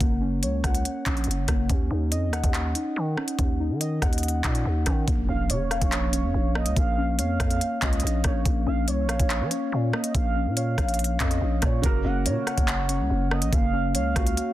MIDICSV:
0, 0, Header, 1, 7, 480
1, 0, Start_track
1, 0, Key_signature, -5, "minor"
1, 0, Tempo, 422535
1, 6, Time_signature, 4, 2, 24, 8
1, 16506, End_track
2, 0, Start_track
2, 0, Title_t, "Soft synth lead"
2, 0, Program_c, 0, 80
2, 6008, Note_on_c, 0, 77, 90
2, 6235, Note_off_c, 0, 77, 0
2, 6242, Note_on_c, 0, 73, 90
2, 7398, Note_off_c, 0, 73, 0
2, 7443, Note_on_c, 0, 75, 91
2, 7672, Note_off_c, 0, 75, 0
2, 7683, Note_on_c, 0, 77, 102
2, 8136, Note_off_c, 0, 77, 0
2, 8166, Note_on_c, 0, 77, 90
2, 8843, Note_off_c, 0, 77, 0
2, 8887, Note_on_c, 0, 75, 91
2, 9338, Note_off_c, 0, 75, 0
2, 9370, Note_on_c, 0, 73, 91
2, 9596, Note_off_c, 0, 73, 0
2, 9846, Note_on_c, 0, 77, 94
2, 10074, Note_off_c, 0, 77, 0
2, 10084, Note_on_c, 0, 73, 97
2, 11240, Note_off_c, 0, 73, 0
2, 11283, Note_on_c, 0, 75, 79
2, 11512, Note_off_c, 0, 75, 0
2, 11524, Note_on_c, 0, 77, 107
2, 11976, Note_off_c, 0, 77, 0
2, 12004, Note_on_c, 0, 77, 93
2, 12682, Note_off_c, 0, 77, 0
2, 12725, Note_on_c, 0, 75, 77
2, 13177, Note_off_c, 0, 75, 0
2, 13211, Note_on_c, 0, 73, 82
2, 13436, Note_off_c, 0, 73, 0
2, 13683, Note_on_c, 0, 78, 88
2, 13913, Note_off_c, 0, 78, 0
2, 13924, Note_on_c, 0, 73, 88
2, 15079, Note_off_c, 0, 73, 0
2, 15126, Note_on_c, 0, 75, 86
2, 15354, Note_off_c, 0, 75, 0
2, 15367, Note_on_c, 0, 77, 113
2, 15818, Note_off_c, 0, 77, 0
2, 15848, Note_on_c, 0, 77, 89
2, 16506, Note_off_c, 0, 77, 0
2, 16506, End_track
3, 0, Start_track
3, 0, Title_t, "Felt piano"
3, 0, Program_c, 1, 0
3, 13425, Note_on_c, 1, 49, 80
3, 13439, Note_on_c, 1, 58, 70
3, 13454, Note_on_c, 1, 66, 72
3, 13469, Note_on_c, 1, 70, 89
3, 13632, Control_c, 1, 64, 127
3, 16506, Note_off_c, 1, 49, 0
3, 16506, Note_off_c, 1, 58, 0
3, 16506, Note_off_c, 1, 66, 0
3, 16506, Note_off_c, 1, 70, 0
3, 16506, End_track
4, 0, Start_track
4, 0, Title_t, "Synth keys"
4, 0, Program_c, 2, 88
4, 0, Note_on_c, 2, 61, 78
4, 0, Note_on_c, 2, 78, 110
4, 6, Note_on_c, 2, 58, 90
4, 226, Note_off_c, 2, 61, 0
4, 240, Note_on_c, 2, 61, 74
4, 246, Note_off_c, 2, 78, 0
4, 491, Note_on_c, 2, 73, 79
4, 731, Note_on_c, 2, 78, 94
4, 1193, Note_off_c, 2, 61, 0
4, 1206, Note_on_c, 2, 61, 81
4, 1446, Note_off_c, 2, 58, 0
4, 1685, Note_on_c, 2, 58, 74
4, 1910, Note_off_c, 2, 61, 0
4, 1924, Note_on_c, 2, 61, 92
4, 1926, Note_off_c, 2, 58, 0
4, 1928, Note_off_c, 2, 78, 0
4, 1929, Note_off_c, 2, 73, 0
4, 2169, Note_on_c, 2, 63, 75
4, 2403, Note_on_c, 2, 75, 78
4, 2645, Note_on_c, 2, 78, 103
4, 3115, Note_off_c, 2, 63, 0
4, 3128, Note_on_c, 2, 63, 79
4, 3365, Note_off_c, 2, 61, 0
4, 3600, Note_on_c, 2, 61, 75
4, 3833, Note_off_c, 2, 61, 0
4, 3844, Note_off_c, 2, 75, 0
4, 3847, Note_on_c, 2, 61, 85
4, 4077, Note_off_c, 2, 63, 0
4, 4085, Note_off_c, 2, 78, 0
4, 4091, Note_on_c, 2, 63, 81
4, 4324, Note_on_c, 2, 75, 84
4, 4570, Note_on_c, 2, 78, 103
4, 5033, Note_off_c, 2, 63, 0
4, 5286, Note_off_c, 2, 61, 0
4, 5531, Note_on_c, 2, 61, 72
4, 5765, Note_off_c, 2, 75, 0
4, 5768, Note_off_c, 2, 61, 0
4, 5768, Note_off_c, 2, 78, 0
4, 5768, Note_on_c, 2, 58, 91
4, 6003, Note_on_c, 2, 61, 74
4, 6248, Note_on_c, 2, 73, 86
4, 6488, Note_on_c, 2, 77, 98
4, 6949, Note_off_c, 2, 61, 0
4, 6962, Note_on_c, 2, 61, 72
4, 7207, Note_off_c, 2, 58, 0
4, 7447, Note_on_c, 2, 58, 71
4, 7673, Note_off_c, 2, 58, 0
4, 7687, Note_off_c, 2, 73, 0
4, 7687, Note_on_c, 2, 58, 90
4, 7913, Note_off_c, 2, 61, 0
4, 7927, Note_off_c, 2, 77, 0
4, 7927, Note_on_c, 2, 61, 83
4, 8166, Note_on_c, 2, 73, 83
4, 8407, Note_on_c, 2, 77, 107
4, 8867, Note_off_c, 2, 61, 0
4, 8881, Note_on_c, 2, 61, 81
4, 9126, Note_off_c, 2, 58, 0
4, 9363, Note_on_c, 2, 58, 82
4, 9585, Note_off_c, 2, 58, 0
4, 9598, Note_on_c, 2, 58, 89
4, 9606, Note_off_c, 2, 73, 0
4, 9829, Note_off_c, 2, 61, 0
4, 9843, Note_on_c, 2, 61, 85
4, 9847, Note_off_c, 2, 77, 0
4, 10088, Note_on_c, 2, 73, 87
4, 10326, Note_on_c, 2, 77, 106
4, 10789, Note_off_c, 2, 61, 0
4, 10802, Note_on_c, 2, 61, 82
4, 11042, Note_off_c, 2, 58, 0
4, 11288, Note_on_c, 2, 58, 78
4, 11510, Note_off_c, 2, 58, 0
4, 11524, Note_on_c, 2, 58, 90
4, 11527, Note_off_c, 2, 73, 0
4, 11750, Note_off_c, 2, 61, 0
4, 11764, Note_on_c, 2, 61, 77
4, 11766, Note_off_c, 2, 77, 0
4, 12005, Note_on_c, 2, 73, 82
4, 12245, Note_on_c, 2, 77, 110
4, 12714, Note_off_c, 2, 61, 0
4, 12728, Note_on_c, 2, 61, 76
4, 12965, Note_off_c, 2, 58, 0
4, 13206, Note_on_c, 2, 58, 82
4, 13433, Note_off_c, 2, 58, 0
4, 13445, Note_off_c, 2, 73, 0
4, 13445, Note_off_c, 2, 77, 0
4, 13446, Note_on_c, 2, 58, 95
4, 13447, Note_off_c, 2, 61, 0
4, 13680, Note_on_c, 2, 61, 81
4, 13927, Note_on_c, 2, 73, 82
4, 14165, Note_on_c, 2, 78, 111
4, 14634, Note_off_c, 2, 61, 0
4, 14647, Note_on_c, 2, 61, 79
4, 14886, Note_off_c, 2, 58, 0
4, 15126, Note_on_c, 2, 58, 79
4, 15350, Note_off_c, 2, 58, 0
4, 15364, Note_on_c, 2, 58, 90
4, 15366, Note_off_c, 2, 73, 0
4, 15584, Note_off_c, 2, 61, 0
4, 15598, Note_on_c, 2, 61, 78
4, 15605, Note_off_c, 2, 78, 0
4, 15848, Note_on_c, 2, 73, 82
4, 16091, Note_on_c, 2, 66, 96
4, 16506, Note_off_c, 2, 58, 0
4, 16506, Note_off_c, 2, 61, 0
4, 16506, Note_off_c, 2, 66, 0
4, 16506, Note_off_c, 2, 73, 0
4, 16506, End_track
5, 0, Start_track
5, 0, Title_t, "808-style bass"
5, 0, Program_c, 3, 38
5, 6, Note_on_c, 3, 30, 109
5, 485, Note_on_c, 3, 37, 100
5, 502, Note_off_c, 3, 30, 0
5, 713, Note_off_c, 3, 37, 0
5, 726, Note_on_c, 3, 37, 104
5, 956, Note_off_c, 3, 37, 0
5, 1207, Note_on_c, 3, 34, 104
5, 1437, Note_off_c, 3, 34, 0
5, 1446, Note_on_c, 3, 30, 106
5, 1676, Note_off_c, 3, 30, 0
5, 1686, Note_on_c, 3, 30, 109
5, 1916, Note_off_c, 3, 30, 0
5, 1925, Note_on_c, 3, 39, 113
5, 2156, Note_off_c, 3, 39, 0
5, 2166, Note_on_c, 3, 39, 106
5, 2406, Note_on_c, 3, 41, 99
5, 2423, Note_off_c, 3, 39, 0
5, 2585, Note_on_c, 3, 39, 97
5, 2602, Note_off_c, 3, 41, 0
5, 2756, Note_off_c, 3, 39, 0
5, 2767, Note_on_c, 3, 39, 108
5, 3112, Note_off_c, 3, 39, 0
5, 3366, Note_on_c, 3, 51, 107
5, 3596, Note_off_c, 3, 51, 0
5, 3847, Note_on_c, 3, 39, 104
5, 4206, Note_on_c, 3, 51, 98
5, 4223, Note_off_c, 3, 39, 0
5, 4548, Note_off_c, 3, 51, 0
5, 4568, Note_on_c, 3, 39, 103
5, 5027, Note_off_c, 3, 39, 0
5, 5048, Note_on_c, 3, 46, 105
5, 5277, Note_off_c, 3, 46, 0
5, 5287, Note_on_c, 3, 39, 108
5, 5517, Note_off_c, 3, 39, 0
5, 5526, Note_on_c, 3, 51, 109
5, 5756, Note_off_c, 3, 51, 0
5, 5766, Note_on_c, 3, 34, 117
5, 5996, Note_off_c, 3, 34, 0
5, 6006, Note_on_c, 3, 34, 110
5, 6246, Note_on_c, 3, 49, 96
5, 6263, Note_off_c, 3, 34, 0
5, 6360, Note_off_c, 3, 49, 0
5, 6606, Note_on_c, 3, 34, 112
5, 7085, Note_on_c, 3, 41, 99
5, 7102, Note_off_c, 3, 34, 0
5, 7199, Note_off_c, 3, 41, 0
5, 7206, Note_on_c, 3, 34, 105
5, 7567, Note_on_c, 3, 37, 100
5, 7584, Note_off_c, 3, 34, 0
5, 7678, Note_off_c, 3, 37, 0
5, 7684, Note_on_c, 3, 34, 108
5, 8166, Note_on_c, 3, 41, 100
5, 8183, Note_off_c, 3, 34, 0
5, 8394, Note_off_c, 3, 41, 0
5, 8406, Note_on_c, 3, 41, 107
5, 8636, Note_off_c, 3, 41, 0
5, 8886, Note_on_c, 3, 37, 106
5, 9116, Note_off_c, 3, 37, 0
5, 9126, Note_on_c, 3, 34, 110
5, 9356, Note_off_c, 3, 34, 0
5, 9365, Note_on_c, 3, 34, 109
5, 9596, Note_off_c, 3, 34, 0
5, 9605, Note_on_c, 3, 34, 109
5, 9836, Note_off_c, 3, 34, 0
5, 9846, Note_on_c, 3, 34, 110
5, 10086, Note_on_c, 3, 36, 97
5, 10103, Note_off_c, 3, 34, 0
5, 10266, Note_on_c, 3, 34, 101
5, 10283, Note_off_c, 3, 36, 0
5, 10437, Note_off_c, 3, 34, 0
5, 10445, Note_on_c, 3, 34, 113
5, 10686, Note_on_c, 3, 53, 100
5, 10703, Note_off_c, 3, 34, 0
5, 10800, Note_off_c, 3, 53, 0
5, 11046, Note_on_c, 3, 46, 107
5, 11277, Note_off_c, 3, 46, 0
5, 11525, Note_on_c, 3, 34, 107
5, 11886, Note_on_c, 3, 46, 99
5, 11903, Note_off_c, 3, 34, 0
5, 12228, Note_off_c, 3, 46, 0
5, 12246, Note_on_c, 3, 34, 103
5, 12706, Note_off_c, 3, 34, 0
5, 12726, Note_on_c, 3, 41, 106
5, 12956, Note_off_c, 3, 41, 0
5, 12966, Note_on_c, 3, 34, 110
5, 13196, Note_off_c, 3, 34, 0
5, 13205, Note_on_c, 3, 46, 108
5, 13436, Note_off_c, 3, 46, 0
5, 13445, Note_on_c, 3, 30, 112
5, 13676, Note_off_c, 3, 30, 0
5, 13684, Note_on_c, 3, 30, 109
5, 13925, Note_on_c, 3, 46, 103
5, 13942, Note_off_c, 3, 30, 0
5, 14039, Note_off_c, 3, 46, 0
5, 14285, Note_on_c, 3, 30, 111
5, 14765, Note_on_c, 3, 37, 100
5, 14782, Note_off_c, 3, 30, 0
5, 14879, Note_off_c, 3, 37, 0
5, 14885, Note_on_c, 3, 30, 108
5, 15245, Note_on_c, 3, 34, 101
5, 15262, Note_off_c, 3, 30, 0
5, 15359, Note_off_c, 3, 34, 0
5, 15365, Note_on_c, 3, 30, 106
5, 15846, Note_on_c, 3, 37, 97
5, 15863, Note_off_c, 3, 30, 0
5, 16074, Note_off_c, 3, 37, 0
5, 16086, Note_on_c, 3, 37, 108
5, 16316, Note_off_c, 3, 37, 0
5, 16506, End_track
6, 0, Start_track
6, 0, Title_t, "Impact"
6, 0, Program_c, 4, 103
6, 5766, Note_on_c, 4, 60, 87
6, 7686, Note_off_c, 4, 60, 0
6, 16506, End_track
7, 0, Start_track
7, 0, Title_t, "Drums"
7, 6, Note_on_c, 9, 36, 117
7, 6, Note_on_c, 9, 42, 75
7, 119, Note_off_c, 9, 36, 0
7, 119, Note_off_c, 9, 42, 0
7, 485, Note_on_c, 9, 42, 94
7, 599, Note_off_c, 9, 42, 0
7, 725, Note_on_c, 9, 37, 91
7, 726, Note_on_c, 9, 36, 97
7, 728, Note_on_c, 9, 42, 76
7, 839, Note_off_c, 9, 37, 0
7, 840, Note_off_c, 9, 36, 0
7, 842, Note_off_c, 9, 42, 0
7, 847, Note_on_c, 9, 42, 81
7, 960, Note_off_c, 9, 42, 0
7, 969, Note_on_c, 9, 42, 83
7, 1083, Note_off_c, 9, 42, 0
7, 1205, Note_on_c, 9, 42, 81
7, 1206, Note_on_c, 9, 39, 119
7, 1207, Note_on_c, 9, 36, 96
7, 1318, Note_off_c, 9, 42, 0
7, 1319, Note_off_c, 9, 39, 0
7, 1321, Note_off_c, 9, 36, 0
7, 1327, Note_on_c, 9, 42, 49
7, 1407, Note_off_c, 9, 42, 0
7, 1407, Note_on_c, 9, 42, 65
7, 1486, Note_off_c, 9, 42, 0
7, 1486, Note_on_c, 9, 42, 81
7, 1600, Note_off_c, 9, 42, 0
7, 1681, Note_on_c, 9, 42, 79
7, 1686, Note_on_c, 9, 36, 100
7, 1686, Note_on_c, 9, 37, 101
7, 1795, Note_off_c, 9, 42, 0
7, 1799, Note_off_c, 9, 36, 0
7, 1800, Note_off_c, 9, 37, 0
7, 1926, Note_on_c, 9, 36, 111
7, 1926, Note_on_c, 9, 42, 75
7, 2039, Note_off_c, 9, 36, 0
7, 2039, Note_off_c, 9, 42, 0
7, 2405, Note_on_c, 9, 42, 90
7, 2519, Note_off_c, 9, 42, 0
7, 2647, Note_on_c, 9, 37, 95
7, 2649, Note_on_c, 9, 42, 75
7, 2760, Note_off_c, 9, 37, 0
7, 2763, Note_off_c, 9, 42, 0
7, 2767, Note_on_c, 9, 36, 87
7, 2767, Note_on_c, 9, 42, 82
7, 2880, Note_off_c, 9, 36, 0
7, 2881, Note_off_c, 9, 42, 0
7, 2887, Note_on_c, 9, 39, 110
7, 2890, Note_on_c, 9, 42, 85
7, 3001, Note_off_c, 9, 39, 0
7, 3003, Note_off_c, 9, 42, 0
7, 3125, Note_on_c, 9, 42, 80
7, 3239, Note_off_c, 9, 42, 0
7, 3606, Note_on_c, 9, 37, 102
7, 3720, Note_off_c, 9, 37, 0
7, 3723, Note_on_c, 9, 42, 85
7, 3837, Note_off_c, 9, 42, 0
7, 3847, Note_on_c, 9, 36, 112
7, 3847, Note_on_c, 9, 42, 76
7, 3960, Note_off_c, 9, 36, 0
7, 3960, Note_off_c, 9, 42, 0
7, 4326, Note_on_c, 9, 42, 91
7, 4440, Note_off_c, 9, 42, 0
7, 4567, Note_on_c, 9, 36, 95
7, 4567, Note_on_c, 9, 37, 91
7, 4570, Note_on_c, 9, 42, 73
7, 4681, Note_off_c, 9, 36, 0
7, 4681, Note_off_c, 9, 37, 0
7, 4684, Note_off_c, 9, 42, 0
7, 4688, Note_on_c, 9, 42, 72
7, 4747, Note_off_c, 9, 42, 0
7, 4747, Note_on_c, 9, 42, 70
7, 4807, Note_off_c, 9, 42, 0
7, 4807, Note_on_c, 9, 42, 67
7, 4867, Note_off_c, 9, 42, 0
7, 4867, Note_on_c, 9, 42, 72
7, 4980, Note_off_c, 9, 42, 0
7, 5045, Note_on_c, 9, 42, 80
7, 5046, Note_on_c, 9, 39, 119
7, 5048, Note_on_c, 9, 36, 96
7, 5158, Note_off_c, 9, 42, 0
7, 5159, Note_off_c, 9, 39, 0
7, 5161, Note_off_c, 9, 36, 0
7, 5168, Note_on_c, 9, 42, 78
7, 5282, Note_off_c, 9, 42, 0
7, 5521, Note_on_c, 9, 42, 82
7, 5526, Note_on_c, 9, 36, 99
7, 5526, Note_on_c, 9, 37, 100
7, 5635, Note_off_c, 9, 42, 0
7, 5640, Note_off_c, 9, 36, 0
7, 5640, Note_off_c, 9, 37, 0
7, 5766, Note_on_c, 9, 36, 121
7, 5766, Note_on_c, 9, 42, 79
7, 5880, Note_off_c, 9, 36, 0
7, 5880, Note_off_c, 9, 42, 0
7, 6245, Note_on_c, 9, 42, 94
7, 6359, Note_off_c, 9, 42, 0
7, 6486, Note_on_c, 9, 37, 91
7, 6488, Note_on_c, 9, 42, 76
7, 6599, Note_off_c, 9, 37, 0
7, 6602, Note_off_c, 9, 42, 0
7, 6606, Note_on_c, 9, 36, 93
7, 6606, Note_on_c, 9, 42, 82
7, 6720, Note_off_c, 9, 36, 0
7, 6720, Note_off_c, 9, 42, 0
7, 6726, Note_on_c, 9, 39, 113
7, 6728, Note_on_c, 9, 42, 82
7, 6840, Note_off_c, 9, 39, 0
7, 6842, Note_off_c, 9, 42, 0
7, 6964, Note_on_c, 9, 42, 81
7, 7078, Note_off_c, 9, 42, 0
7, 7445, Note_on_c, 9, 37, 103
7, 7559, Note_off_c, 9, 37, 0
7, 7562, Note_on_c, 9, 42, 90
7, 7676, Note_off_c, 9, 42, 0
7, 7685, Note_on_c, 9, 36, 115
7, 7685, Note_on_c, 9, 42, 79
7, 7798, Note_off_c, 9, 36, 0
7, 7798, Note_off_c, 9, 42, 0
7, 8164, Note_on_c, 9, 42, 96
7, 8278, Note_off_c, 9, 42, 0
7, 8405, Note_on_c, 9, 36, 97
7, 8405, Note_on_c, 9, 37, 98
7, 8408, Note_on_c, 9, 42, 78
7, 8519, Note_off_c, 9, 36, 0
7, 8519, Note_off_c, 9, 37, 0
7, 8522, Note_off_c, 9, 42, 0
7, 8526, Note_on_c, 9, 42, 83
7, 8639, Note_off_c, 9, 42, 0
7, 8648, Note_on_c, 9, 42, 82
7, 8762, Note_off_c, 9, 42, 0
7, 8883, Note_on_c, 9, 42, 81
7, 8884, Note_on_c, 9, 39, 118
7, 8886, Note_on_c, 9, 36, 99
7, 8996, Note_off_c, 9, 42, 0
7, 8998, Note_off_c, 9, 39, 0
7, 9000, Note_off_c, 9, 36, 0
7, 9005, Note_on_c, 9, 42, 50
7, 9085, Note_off_c, 9, 42, 0
7, 9085, Note_on_c, 9, 42, 67
7, 9165, Note_off_c, 9, 42, 0
7, 9165, Note_on_c, 9, 42, 79
7, 9279, Note_off_c, 9, 42, 0
7, 9360, Note_on_c, 9, 42, 79
7, 9365, Note_on_c, 9, 36, 104
7, 9365, Note_on_c, 9, 37, 106
7, 9473, Note_off_c, 9, 42, 0
7, 9478, Note_off_c, 9, 37, 0
7, 9479, Note_off_c, 9, 36, 0
7, 9605, Note_on_c, 9, 36, 117
7, 9605, Note_on_c, 9, 42, 78
7, 9718, Note_off_c, 9, 42, 0
7, 9719, Note_off_c, 9, 36, 0
7, 10085, Note_on_c, 9, 42, 98
7, 10198, Note_off_c, 9, 42, 0
7, 10325, Note_on_c, 9, 37, 98
7, 10328, Note_on_c, 9, 42, 76
7, 10439, Note_off_c, 9, 37, 0
7, 10441, Note_off_c, 9, 42, 0
7, 10446, Note_on_c, 9, 36, 89
7, 10446, Note_on_c, 9, 42, 84
7, 10559, Note_off_c, 9, 36, 0
7, 10559, Note_off_c, 9, 42, 0
7, 10566, Note_on_c, 9, 39, 113
7, 10568, Note_on_c, 9, 42, 83
7, 10680, Note_off_c, 9, 39, 0
7, 10682, Note_off_c, 9, 42, 0
7, 10804, Note_on_c, 9, 42, 83
7, 10917, Note_off_c, 9, 42, 0
7, 11285, Note_on_c, 9, 37, 108
7, 11399, Note_off_c, 9, 37, 0
7, 11403, Note_on_c, 9, 42, 89
7, 11516, Note_off_c, 9, 42, 0
7, 11525, Note_on_c, 9, 36, 119
7, 11526, Note_on_c, 9, 42, 80
7, 11639, Note_off_c, 9, 36, 0
7, 11639, Note_off_c, 9, 42, 0
7, 12005, Note_on_c, 9, 42, 94
7, 12119, Note_off_c, 9, 42, 0
7, 12245, Note_on_c, 9, 36, 100
7, 12246, Note_on_c, 9, 37, 98
7, 12248, Note_on_c, 9, 42, 77
7, 12359, Note_off_c, 9, 36, 0
7, 12359, Note_off_c, 9, 37, 0
7, 12362, Note_off_c, 9, 42, 0
7, 12365, Note_on_c, 9, 42, 72
7, 12425, Note_off_c, 9, 42, 0
7, 12425, Note_on_c, 9, 42, 70
7, 12486, Note_off_c, 9, 42, 0
7, 12486, Note_on_c, 9, 42, 71
7, 12545, Note_off_c, 9, 42, 0
7, 12545, Note_on_c, 9, 42, 70
7, 12659, Note_off_c, 9, 42, 0
7, 12723, Note_on_c, 9, 42, 86
7, 12724, Note_on_c, 9, 39, 121
7, 12726, Note_on_c, 9, 36, 100
7, 12837, Note_off_c, 9, 42, 0
7, 12838, Note_off_c, 9, 39, 0
7, 12840, Note_off_c, 9, 36, 0
7, 12846, Note_on_c, 9, 42, 77
7, 12960, Note_off_c, 9, 42, 0
7, 13200, Note_on_c, 9, 42, 80
7, 13205, Note_on_c, 9, 36, 102
7, 13205, Note_on_c, 9, 37, 105
7, 13313, Note_off_c, 9, 42, 0
7, 13318, Note_off_c, 9, 36, 0
7, 13318, Note_off_c, 9, 37, 0
7, 13445, Note_on_c, 9, 36, 113
7, 13445, Note_on_c, 9, 42, 79
7, 13558, Note_off_c, 9, 36, 0
7, 13558, Note_off_c, 9, 42, 0
7, 13924, Note_on_c, 9, 42, 91
7, 14038, Note_off_c, 9, 42, 0
7, 14165, Note_on_c, 9, 37, 95
7, 14168, Note_on_c, 9, 42, 77
7, 14279, Note_off_c, 9, 37, 0
7, 14281, Note_off_c, 9, 42, 0
7, 14285, Note_on_c, 9, 36, 89
7, 14286, Note_on_c, 9, 42, 82
7, 14399, Note_off_c, 9, 36, 0
7, 14399, Note_off_c, 9, 42, 0
7, 14405, Note_on_c, 9, 39, 113
7, 14407, Note_on_c, 9, 42, 82
7, 14519, Note_off_c, 9, 39, 0
7, 14521, Note_off_c, 9, 42, 0
7, 14643, Note_on_c, 9, 42, 86
7, 14757, Note_off_c, 9, 42, 0
7, 15124, Note_on_c, 9, 37, 105
7, 15238, Note_off_c, 9, 37, 0
7, 15242, Note_on_c, 9, 42, 87
7, 15356, Note_off_c, 9, 42, 0
7, 15365, Note_on_c, 9, 36, 118
7, 15365, Note_on_c, 9, 42, 79
7, 15478, Note_off_c, 9, 42, 0
7, 15479, Note_off_c, 9, 36, 0
7, 15844, Note_on_c, 9, 42, 94
7, 15958, Note_off_c, 9, 42, 0
7, 16085, Note_on_c, 9, 36, 100
7, 16085, Note_on_c, 9, 37, 96
7, 16087, Note_on_c, 9, 42, 77
7, 16198, Note_off_c, 9, 37, 0
7, 16199, Note_off_c, 9, 36, 0
7, 16201, Note_off_c, 9, 42, 0
7, 16206, Note_on_c, 9, 42, 87
7, 16319, Note_off_c, 9, 42, 0
7, 16328, Note_on_c, 9, 42, 82
7, 16442, Note_off_c, 9, 42, 0
7, 16506, End_track
0, 0, End_of_file